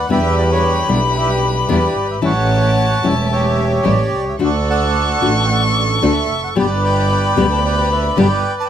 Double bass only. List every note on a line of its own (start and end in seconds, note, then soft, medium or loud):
0.10 0.85 E2 loud
0.89 1.65 B1 medium
1.69 1.91 E2 medium
1.95 2.22 G1 medium
2.22 2.99 A1 loud
3.03 3.81 E1 medium
3.85 4.08 A1 medium
4.12 4.39 C2 medium
4.40 5.17 D2 medium
5.22 5.99 A1 medium
6.02 6.25 D2 medium
6.29 6.56 F1 medium
6.57 7.33 G1 loud
7.37 8.13 D2 medium
8.16 8.39 G1 medium